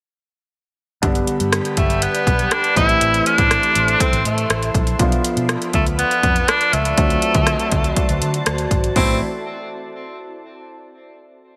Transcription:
1.02 G1 D3 G3 B3 D4 G4 B4 D5 B5, kick, closed hi-hat
1.15 closed hi-hat
1.27 closed hi-hat
1.40 G2, closed hi-hat
1.52 cross-stick, closed hi-hat
1.65 closed hi-hat
1.77 G1 A3, kick, closed hi-hat
1.90 closed hi-hat
2.02 B3, closed hi-hat
2.15 closed hi-hat
2.27 B1, kick, closed hi-hat
2.39 closed hi-hat
2.51 D4, cross-stick, closed hi-hat
2.64 closed hi-hat
2.75 A1 E3 A3 C4 E4 A4 C5 E5 C6, kick, closed hi-hat
2.89 closed hi-hat
3.01 A1, closed hi-hat
3.14 closed hi-hat
3.26 D4, closed hi-hat
3.38 A2, kick, closed hi-hat
3.51 cross-stick, closed hi-hat
3.63 closed hi-hat
3.75 A1, closed hi-hat
3.88 closed hi-hat
4.00 C4, kick, closed hi-hat
4.12 A1, closed hi-hat
4.25 A2 A3, closed hi-hat
4.38 closed hi-hat
4.50 A1, cross-stick, closed hi-hat
4.63 closed hi-hat
4.74 A#1, kick, closed hi-hat
4.87 closed hi-hat
4.99 B1 F3 B3 D4 F4 B4 D5 B5, kick, closed hi-hat
5.12 closed hi-hat
5.24 closed hi-hat
5.37 B2, closed hi-hat
5.49 cross-stick, closed hi-hat
5.62 closed hi-hat
5.73 D2 A3, kick, closed hi-hat
5.87 closed hi-hat
5.99 B3, closed hi-hat
6.11 closed hi-hat
6.23 F2, kick, closed hi-hat
6.36 closed hi-hat
6.48 D4, cross-stick, closed hi-hat
6.61 closed hi-hat
6.73 C#2 A3, closed hi-hat
6.85 closed hi-hat
6.96 D2 F#3 A3 C4 D4 F#4 C5 A5, kick, closed hi-hat
7.10 closed hi-hat
7.22 closed hi-hat
7.34 D3, kick, closed hi-hat
7.47 cross-stick, closed hi-hat
7.59 closed hi-hat
7.72 D2, kick, closed hi-hat
7.84 closed hi-hat
7.96 kick, closed hi-hat
8.09 D2, closed hi-hat
8.22 D3, closed hi-hat
8.34 closed hi-hat
8.46 D2, cross-stick, closed hi-hat
8.58 closed hi-hat
8.71 G#1, kick, closed hi-hat
8.84 closed hi-hat
8.96 A1 E3 A3 C4 E4, kick, open hi-hat

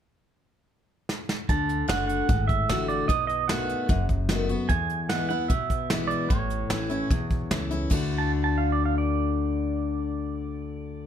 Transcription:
1.09 snare
1.29 snare
1.49 D2 D3 A5, kick, closed hi-hat
1.69 closed hi-hat
1.88 F#1 D3 A3 D4 F#4 F#5, snare, closed hi-hat
2.08 F#5, closed hi-hat
2.29 G#1 A2, kick, closed hi-hat
2.48 E5, kick, closed hi-hat
2.69 A1 D3 A3 D4 F#4, snare, closed hi-hat
2.88 D5, closed hi-hat
3.08 B1 B2 D#5, kick, closed hi-hat
3.27 D#5, closed hi-hat
3.48 D#3 A3 B3 F#4 F#5, snare, closed hi-hat
3.69 closed hi-hat
3.89 F#1 F#2, kick, closed hi-hat
4.09 kick, closed hi-hat
4.29 D#3 A3 B3 F#4, snare, closed hi-hat
4.49 B3 F#4, closed hi-hat
4.69 E2 G#5, kick, closed hi-hat
4.90 closed hi-hat
5.09 E3 G#3 B3 E4 F#5, snare, closed hi-hat
5.29 E4 F#5, closed hi-hat
5.33 B3
5.48 B1 B2 E5, kick, closed hi-hat
5.70 kick, closed hi-hat
5.90 E3 G#3 B3 E4, snare, closed hi-hat
6.08 D5, closed hi-hat
6.29 A1 A2 C#5, kick, closed hi-hat
6.50 closed hi-hat
6.70 A1 E3 A3 C#4 E4, snare, closed hi-hat
6.90 C#4 E4, closed hi-hat
7.10 B1 E2, kick, closed hi-hat
7.30 kick, closed hi-hat
7.51 C#2 E3 A3 C#4 E4, snare, closed hi-hat
7.71 C#4 E4, closed hi-hat
7.90 D2 D3 A3 D4 F#4, kick, crash
8.18 A5
8.44 A5
8.58 F5
8.72 D5
8.85 F5
8.98 D5

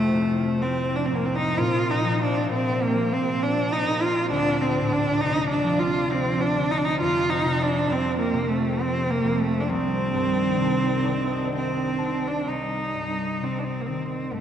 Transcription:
Already playing: F2 A2 C3 F3 A3 C4
0.13 C3
0.62 C4
0.96 D4
1.06 C4
1.11 F2
1.15 A#3
1.25 C4
1.36 D#4
1.55 A#2 C3 C4 F4
1.91 D#4
2.05 F3
2.23 D4
2.49 A#2
2.53 C4
2.83 A#3
2.94 F3
3.13 C4
3.43 D4
3.73 D#4
3.86 A#2
4.01 F4
4.29 D2 C3 F3 D4 D5
4.61 C4
4.76 A2
4.93 D4
5.21 C3 D#4
5.50 D4
5.64 F3
5.79 F4
6.11 C4
6.41 D4
6.55 D3
6.71 D#4
6.78 D4
6.84 D#4
6.99 F2 C3 C4 F4
7.30 D#4
7.45 C3
7.62 D4
7.89 F2 C4
8.19 A#3
8.33 C3
8.48 A3
8.81 C4
9.10 A#3
9.25 F2
9.41 A3
9.60 D4
9.68 C2 C3 D#3 C4 D4
10.14 G2
10.58 C3
11.04 D#3 D5
11.28 D#5
11.53 G5
11.57 C4
11.98 C3 A5
12.27 D4
12.48 C2 D#4
12.94 G2
13.41 C3 C4
13.59 D4
13.64 C4
13.81 A#3
13.86 D#3 C4
14.10 C4
14.32 G2 A3

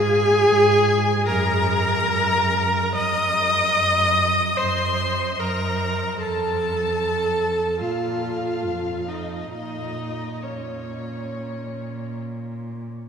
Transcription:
Already playing: G#2 G#4 G#5
0.48 G#2
1.26 F#2 A#4 A#5
2.09 F#2
2.96 F#2 D#5 D#6
3.76 F#2
4.57 F#2 C5 C6
5.39 F#2 A#4 A#5
6.20 F2 A4 A5
7.81 A#2 F4 F5
8.65 F2
9.07 D#4 D#5
9.53 A#2 D#4 D#5
10.42 C#4 C#5

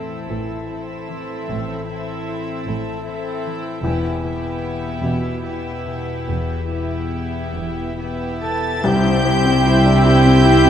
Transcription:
Already playing: A1 A2 E3 C4 E4 A4 E5
0.29 A1 A2 E3 A4
0.69 C4 E4 A4 E5
1.09 E3
1.49 A1 A2
1.88 C4 E4 A4 E5
2.29 E4
2.67 A1 A2 A4
3.06 C4 E4 A4 E5
3.46 E3
3.84 E1 E2 B3 E4 G4 E5
4.23 B2 B3 E4 G4 E5
4.64 E4
5.03 E1 E2 B2 G4
5.44 B3 E4 G4 E5
5.86 B2
6.28 E1 E2
6.71 B3 E4 G4 E5
7.14 E4
7.56 E1 E2 G4
7.99 B3 E4 G4 E5
8.42 B2 A4 A5 A6
8.83 C2 C3 G3 C4 E4 G4 E5 G5 G6
9.03 C4
9.25 E4 C5
9.45 C4 G4
9.66 E4 C5
9.85 D4 E5
10.05 E4 G4 G5 G6
10.26 C4 E5
10.45 E4 C5
10.65 C4

